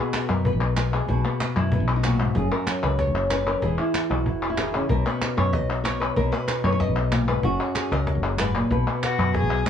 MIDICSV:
0, 0, Header, 1, 6, 480
1, 0, Start_track
1, 0, Key_signature, 5, "major"
1, 0, Tempo, 317628
1, 1647, Time_signature, 4, 2, 24, 8
1, 14654, End_track
2, 0, Start_track
2, 0, Title_t, "Violin"
2, 0, Program_c, 0, 40
2, 13648, Note_on_c, 0, 66, 94
2, 14095, Note_off_c, 0, 66, 0
2, 14132, Note_on_c, 0, 68, 102
2, 14640, Note_off_c, 0, 68, 0
2, 14654, End_track
3, 0, Start_track
3, 0, Title_t, "Nylon-string guitar"
3, 0, Program_c, 1, 24
3, 0, Note_on_c, 1, 47, 68
3, 0, Note_on_c, 1, 59, 59
3, 0, Note_on_c, 1, 63, 45
3, 0, Note_on_c, 1, 66, 81
3, 0, Note_on_c, 1, 68, 84
3, 217, Note_off_c, 1, 63, 0
3, 223, Note_on_c, 1, 63, 46
3, 449, Note_off_c, 1, 68, 0
3, 451, Note_off_c, 1, 66, 0
3, 458, Note_on_c, 1, 70, 80
3, 693, Note_off_c, 1, 70, 0
3, 705, Note_on_c, 1, 71, 82
3, 923, Note_off_c, 1, 63, 0
3, 942, Note_on_c, 1, 63, 42
3, 1151, Note_off_c, 1, 59, 0
3, 1170, Note_on_c, 1, 59, 60
3, 1411, Note_off_c, 1, 71, 0
3, 1417, Note_on_c, 1, 68, 85
3, 1619, Note_off_c, 1, 59, 0
3, 1625, Note_off_c, 1, 63, 0
3, 1628, Note_off_c, 1, 47, 0
3, 1645, Note_on_c, 1, 47, 71
3, 1653, Note_on_c, 1, 66, 83
3, 1888, Note_on_c, 1, 59, 61
3, 2127, Note_off_c, 1, 59, 0
3, 2131, Note_off_c, 1, 68, 0
3, 2146, Note_on_c, 1, 59, 49
3, 2367, Note_on_c, 1, 64, 85
3, 2606, Note_off_c, 1, 59, 0
3, 2625, Note_on_c, 1, 59, 52
3, 2846, Note_off_c, 1, 66, 0
3, 2959, Note_off_c, 1, 64, 0
3, 2965, Note_on_c, 1, 63, 79
3, 3084, Note_on_c, 1, 46, 65
3, 3089, Note_on_c, 1, 66, 79
3, 3325, Note_off_c, 1, 46, 0
3, 3334, Note_on_c, 1, 44, 62
3, 3545, Note_off_c, 1, 59, 0
3, 3558, Note_off_c, 1, 44, 0
3, 3564, Note_off_c, 1, 47, 0
3, 3564, Note_off_c, 1, 63, 0
3, 3564, Note_off_c, 1, 66, 0
3, 3564, Note_on_c, 1, 42, 77
3, 3568, Note_on_c, 1, 68, 90
3, 3798, Note_off_c, 1, 68, 0
3, 3804, Note_on_c, 1, 70, 93
3, 3807, Note_on_c, 1, 54, 64
3, 4046, Note_off_c, 1, 54, 0
3, 4066, Note_on_c, 1, 54, 51
3, 4283, Note_on_c, 1, 71, 92
3, 4516, Note_off_c, 1, 71, 0
3, 4516, Note_on_c, 1, 73, 91
3, 4763, Note_off_c, 1, 70, 0
3, 4774, Note_on_c, 1, 68, 47
3, 4997, Note_off_c, 1, 54, 0
3, 5000, Note_off_c, 1, 73, 0
3, 5003, Note_on_c, 1, 49, 60
3, 5008, Note_on_c, 1, 71, 89
3, 5238, Note_off_c, 1, 49, 0
3, 5242, Note_off_c, 1, 68, 0
3, 5244, Note_on_c, 1, 51, 61
3, 5248, Note_on_c, 1, 70, 82
3, 5468, Note_off_c, 1, 70, 0
3, 5474, Note_on_c, 1, 68, 87
3, 5483, Note_off_c, 1, 42, 0
3, 5484, Note_off_c, 1, 51, 0
3, 5484, Note_off_c, 1, 71, 0
3, 5484, Note_on_c, 1, 52, 74
3, 5497, Note_on_c, 1, 64, 48
3, 5709, Note_off_c, 1, 64, 0
3, 5727, Note_on_c, 1, 64, 57
3, 5961, Note_off_c, 1, 64, 0
3, 5979, Note_on_c, 1, 64, 47
3, 6191, Note_on_c, 1, 66, 92
3, 6440, Note_off_c, 1, 64, 0
3, 6458, Note_on_c, 1, 64, 48
3, 6678, Note_off_c, 1, 68, 0
3, 6777, Note_off_c, 1, 64, 0
3, 6795, Note_on_c, 1, 64, 78
3, 6925, Note_on_c, 1, 68, 82
3, 6935, Note_on_c, 1, 51, 64
3, 7163, Note_off_c, 1, 51, 0
3, 7169, Note_on_c, 1, 49, 62
3, 7276, Note_off_c, 1, 66, 0
3, 7394, Note_off_c, 1, 68, 0
3, 7398, Note_off_c, 1, 64, 0
3, 7400, Note_on_c, 1, 70, 98
3, 7401, Note_off_c, 1, 49, 0
3, 7403, Note_off_c, 1, 52, 0
3, 7407, Note_on_c, 1, 47, 70
3, 7640, Note_off_c, 1, 70, 0
3, 7640, Note_on_c, 1, 71, 88
3, 7651, Note_on_c, 1, 59, 59
3, 7908, Note_on_c, 1, 63, 47
3, 8118, Note_on_c, 1, 73, 97
3, 8353, Note_off_c, 1, 73, 0
3, 8353, Note_on_c, 1, 75, 106
3, 8599, Note_off_c, 1, 63, 0
3, 8601, Note_off_c, 1, 71, 0
3, 8617, Note_on_c, 1, 63, 42
3, 8813, Note_off_c, 1, 75, 0
3, 8819, Note_off_c, 1, 59, 0
3, 8819, Note_on_c, 1, 73, 92
3, 8837, Note_on_c, 1, 59, 63
3, 9066, Note_on_c, 1, 71, 88
3, 9291, Note_off_c, 1, 59, 0
3, 9301, Note_off_c, 1, 63, 0
3, 9307, Note_off_c, 1, 47, 0
3, 9312, Note_off_c, 1, 71, 0
3, 9318, Note_on_c, 1, 70, 95
3, 9325, Note_on_c, 1, 47, 72
3, 9547, Note_off_c, 1, 70, 0
3, 9547, Note_on_c, 1, 71, 93
3, 9551, Note_off_c, 1, 73, 0
3, 9560, Note_on_c, 1, 59, 60
3, 9817, Note_on_c, 1, 63, 49
3, 10041, Note_on_c, 1, 73, 98
3, 10070, Note_off_c, 1, 71, 0
3, 10088, Note_on_c, 1, 71, 80
3, 10142, Note_off_c, 1, 73, 0
3, 10160, Note_on_c, 1, 73, 99
3, 10274, Note_off_c, 1, 73, 0
3, 10274, Note_on_c, 1, 75, 94
3, 10511, Note_off_c, 1, 63, 0
3, 10530, Note_on_c, 1, 63, 44
3, 10635, Note_off_c, 1, 71, 0
3, 10755, Note_on_c, 1, 46, 60
3, 10989, Note_off_c, 1, 46, 0
3, 10995, Note_on_c, 1, 44, 64
3, 11002, Note_on_c, 1, 71, 91
3, 11213, Note_off_c, 1, 59, 0
3, 11218, Note_off_c, 1, 63, 0
3, 11227, Note_off_c, 1, 44, 0
3, 11233, Note_on_c, 1, 42, 72
3, 11239, Note_off_c, 1, 75, 0
3, 11241, Note_off_c, 1, 71, 0
3, 11244, Note_off_c, 1, 47, 0
3, 11246, Note_on_c, 1, 66, 99
3, 11475, Note_on_c, 1, 54, 60
3, 11481, Note_on_c, 1, 68, 85
3, 11704, Note_off_c, 1, 68, 0
3, 11723, Note_on_c, 1, 68, 94
3, 11962, Note_off_c, 1, 66, 0
3, 11967, Note_off_c, 1, 68, 0
3, 11967, Note_on_c, 1, 70, 93
3, 12443, Note_off_c, 1, 70, 0
3, 12449, Note_on_c, 1, 68, 44
3, 12676, Note_off_c, 1, 42, 0
3, 12682, Note_on_c, 1, 44, 66
3, 12690, Note_on_c, 1, 71, 87
3, 12918, Note_off_c, 1, 44, 0
3, 12924, Note_on_c, 1, 46, 64
3, 13139, Note_off_c, 1, 68, 0
3, 13154, Note_off_c, 1, 54, 0
3, 13159, Note_off_c, 1, 71, 0
3, 13160, Note_on_c, 1, 47, 76
3, 13165, Note_off_c, 1, 46, 0
3, 13177, Note_on_c, 1, 71, 94
3, 13403, Note_on_c, 1, 59, 60
3, 14138, Note_on_c, 1, 66, 52
3, 14588, Note_off_c, 1, 59, 0
3, 14607, Note_on_c, 1, 59, 66
3, 14654, Note_off_c, 1, 47, 0
3, 14654, Note_off_c, 1, 59, 0
3, 14654, Note_off_c, 1, 66, 0
3, 14654, Note_off_c, 1, 71, 0
3, 14654, End_track
4, 0, Start_track
4, 0, Title_t, "Fretless electric bass"
4, 0, Program_c, 2, 35
4, 450, Note_on_c, 2, 42, 76
4, 804, Note_on_c, 2, 35, 81
4, 827, Note_off_c, 2, 42, 0
4, 1516, Note_off_c, 2, 35, 0
4, 1645, Note_on_c, 2, 35, 96
4, 1849, Note_off_c, 2, 35, 0
4, 2362, Note_on_c, 2, 42, 78
4, 2724, Note_on_c, 2, 35, 83
4, 2746, Note_off_c, 2, 42, 0
4, 3434, Note_off_c, 2, 35, 0
4, 3558, Note_on_c, 2, 30, 97
4, 3763, Note_off_c, 2, 30, 0
4, 4282, Note_on_c, 2, 37, 80
4, 4640, Note_on_c, 2, 30, 81
4, 4663, Note_off_c, 2, 37, 0
4, 5352, Note_off_c, 2, 30, 0
4, 5478, Note_on_c, 2, 28, 93
4, 5683, Note_off_c, 2, 28, 0
4, 6198, Note_on_c, 2, 35, 81
4, 6560, Note_off_c, 2, 35, 0
4, 6560, Note_on_c, 2, 28, 77
4, 7272, Note_off_c, 2, 28, 0
4, 7402, Note_on_c, 2, 35, 96
4, 7605, Note_off_c, 2, 35, 0
4, 8127, Note_on_c, 2, 42, 84
4, 8484, Note_off_c, 2, 42, 0
4, 8484, Note_on_c, 2, 35, 78
4, 9194, Note_off_c, 2, 35, 0
4, 9319, Note_on_c, 2, 35, 99
4, 9523, Note_off_c, 2, 35, 0
4, 10032, Note_on_c, 2, 42, 87
4, 10394, Note_on_c, 2, 35, 82
4, 10417, Note_off_c, 2, 42, 0
4, 11109, Note_off_c, 2, 35, 0
4, 11230, Note_on_c, 2, 30, 95
4, 11439, Note_off_c, 2, 30, 0
4, 11956, Note_on_c, 2, 37, 84
4, 12313, Note_on_c, 2, 30, 89
4, 12336, Note_off_c, 2, 37, 0
4, 13029, Note_off_c, 2, 30, 0
4, 13155, Note_on_c, 2, 35, 96
4, 13363, Note_off_c, 2, 35, 0
4, 13883, Note_on_c, 2, 42, 84
4, 14243, Note_on_c, 2, 35, 85
4, 14266, Note_off_c, 2, 42, 0
4, 14551, Note_off_c, 2, 35, 0
4, 14606, Note_on_c, 2, 32, 78
4, 14654, Note_off_c, 2, 32, 0
4, 14654, End_track
5, 0, Start_track
5, 0, Title_t, "Cajon"
5, 211, Note_on_c, 9, 38, 90
5, 362, Note_off_c, 9, 38, 0
5, 688, Note_on_c, 9, 36, 96
5, 839, Note_off_c, 9, 36, 0
5, 926, Note_on_c, 9, 38, 31
5, 1077, Note_off_c, 9, 38, 0
5, 1169, Note_on_c, 9, 38, 100
5, 1320, Note_off_c, 9, 38, 0
5, 1641, Note_on_c, 9, 36, 81
5, 1792, Note_off_c, 9, 36, 0
5, 2125, Note_on_c, 9, 38, 85
5, 2276, Note_off_c, 9, 38, 0
5, 2598, Note_on_c, 9, 36, 99
5, 2749, Note_off_c, 9, 36, 0
5, 3076, Note_on_c, 9, 38, 96
5, 3227, Note_off_c, 9, 38, 0
5, 3556, Note_on_c, 9, 36, 84
5, 3707, Note_off_c, 9, 36, 0
5, 4034, Note_on_c, 9, 38, 91
5, 4185, Note_off_c, 9, 38, 0
5, 4516, Note_on_c, 9, 36, 92
5, 4516, Note_on_c, 9, 38, 29
5, 4667, Note_off_c, 9, 36, 0
5, 4667, Note_off_c, 9, 38, 0
5, 4993, Note_on_c, 9, 38, 95
5, 5144, Note_off_c, 9, 38, 0
5, 5474, Note_on_c, 9, 36, 93
5, 5625, Note_off_c, 9, 36, 0
5, 5957, Note_on_c, 9, 38, 91
5, 6108, Note_off_c, 9, 38, 0
5, 6437, Note_on_c, 9, 36, 99
5, 6588, Note_off_c, 9, 36, 0
5, 6677, Note_on_c, 9, 38, 27
5, 6828, Note_off_c, 9, 38, 0
5, 6916, Note_on_c, 9, 38, 104
5, 7067, Note_off_c, 9, 38, 0
5, 7395, Note_on_c, 9, 36, 92
5, 7546, Note_off_c, 9, 36, 0
5, 7881, Note_on_c, 9, 38, 99
5, 8032, Note_off_c, 9, 38, 0
5, 8363, Note_on_c, 9, 36, 103
5, 8363, Note_on_c, 9, 38, 31
5, 8514, Note_off_c, 9, 36, 0
5, 8514, Note_off_c, 9, 38, 0
5, 8603, Note_on_c, 9, 38, 29
5, 8755, Note_off_c, 9, 38, 0
5, 8837, Note_on_c, 9, 38, 94
5, 8988, Note_off_c, 9, 38, 0
5, 9313, Note_on_c, 9, 36, 84
5, 9464, Note_off_c, 9, 36, 0
5, 9789, Note_on_c, 9, 38, 91
5, 9940, Note_off_c, 9, 38, 0
5, 10275, Note_on_c, 9, 36, 102
5, 10275, Note_on_c, 9, 38, 32
5, 10426, Note_off_c, 9, 36, 0
5, 10426, Note_off_c, 9, 38, 0
5, 10758, Note_on_c, 9, 38, 99
5, 10910, Note_off_c, 9, 38, 0
5, 11232, Note_on_c, 9, 36, 83
5, 11384, Note_off_c, 9, 36, 0
5, 11707, Note_on_c, 9, 38, 97
5, 11859, Note_off_c, 9, 38, 0
5, 11949, Note_on_c, 9, 38, 30
5, 12100, Note_off_c, 9, 38, 0
5, 12192, Note_on_c, 9, 36, 104
5, 12192, Note_on_c, 9, 38, 32
5, 12343, Note_off_c, 9, 36, 0
5, 12343, Note_off_c, 9, 38, 0
5, 12677, Note_on_c, 9, 38, 99
5, 12828, Note_off_c, 9, 38, 0
5, 13164, Note_on_c, 9, 36, 94
5, 13315, Note_off_c, 9, 36, 0
5, 13649, Note_on_c, 9, 38, 94
5, 13800, Note_off_c, 9, 38, 0
5, 14122, Note_on_c, 9, 36, 103
5, 14122, Note_on_c, 9, 38, 33
5, 14273, Note_off_c, 9, 36, 0
5, 14273, Note_off_c, 9, 38, 0
5, 14600, Note_on_c, 9, 38, 100
5, 14654, Note_off_c, 9, 38, 0
5, 14654, End_track
6, 0, Start_track
6, 0, Title_t, "Drums"
6, 209, Note_on_c, 9, 39, 81
6, 360, Note_off_c, 9, 39, 0
6, 1166, Note_on_c, 9, 39, 79
6, 1317, Note_off_c, 9, 39, 0
6, 2126, Note_on_c, 9, 39, 76
6, 2277, Note_off_c, 9, 39, 0
6, 3088, Note_on_c, 9, 39, 82
6, 3239, Note_off_c, 9, 39, 0
6, 4045, Note_on_c, 9, 39, 76
6, 4196, Note_off_c, 9, 39, 0
6, 4997, Note_on_c, 9, 39, 80
6, 5149, Note_off_c, 9, 39, 0
6, 5243, Note_on_c, 9, 39, 44
6, 5395, Note_off_c, 9, 39, 0
6, 5962, Note_on_c, 9, 39, 77
6, 6113, Note_off_c, 9, 39, 0
6, 6917, Note_on_c, 9, 39, 82
6, 7068, Note_off_c, 9, 39, 0
6, 7886, Note_on_c, 9, 39, 78
6, 8037, Note_off_c, 9, 39, 0
6, 8848, Note_on_c, 9, 39, 83
6, 8999, Note_off_c, 9, 39, 0
6, 9802, Note_on_c, 9, 39, 83
6, 9953, Note_off_c, 9, 39, 0
6, 10761, Note_on_c, 9, 39, 77
6, 10912, Note_off_c, 9, 39, 0
6, 11720, Note_on_c, 9, 39, 85
6, 11871, Note_off_c, 9, 39, 0
6, 12676, Note_on_c, 9, 39, 82
6, 12827, Note_off_c, 9, 39, 0
6, 13651, Note_on_c, 9, 39, 86
6, 13802, Note_off_c, 9, 39, 0
6, 14607, Note_on_c, 9, 39, 83
6, 14654, Note_off_c, 9, 39, 0
6, 14654, End_track
0, 0, End_of_file